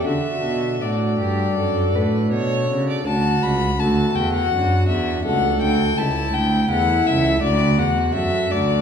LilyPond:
<<
  \new Staff \with { instrumentName = "Violin" } { \time 4/4 \key d \major \tempo 4 = 82 e''4 d''2 r4 | a''8 b''8 a''8 g''16 fis''8. e''8 fis''8 g''8 | a''8 g''8 fis''8 e''8 d''8 fis''8 e''8 d''8 | }
  \new Staff \with { instrumentName = "Violin" } { \time 4/4 \key d \major fis'4 fis'8 g'8 a'8 b'8 cis''8. d''16 | fis'4 fis'2 a'4 | e'4 e'4 fis'2 | }
  \new Staff \with { instrumentName = "Pipe organ" } { \time 4/4 \key d \major <d' fis' a'>1 | r4 <a fis' a'>4 d'4 <a fis' a'>4 | r4 <e' a'>4 r4 <fis' a'>4 | }
  \new Staff \with { instrumentName = "Pipe organ" } { \clef bass \time 4/4 \key d \major d8 b,8 a,8 g,8 fis,8 a,8 b,8 cis8 | d,8 cis,8 d,8 e,8 fis,8 e,8 cis,8 d,8 | cis,8 d,8 e,8 cis,8 d,8 e,8 fis,8 d,8 | }
  \new Staff \with { instrumentName = "Cello" } { \clef bass \time 4/4 \key d \major d8 b,8 a,8 g,8 fis,8 a,8 b,8 cis8 | d,8 cis,8 d,8 e,8 fis,8 e,8 cis,8 d,8 | cis,8 d,8 e,8 cis,8 d,8 e,8 fis,8 d,8 | }
>>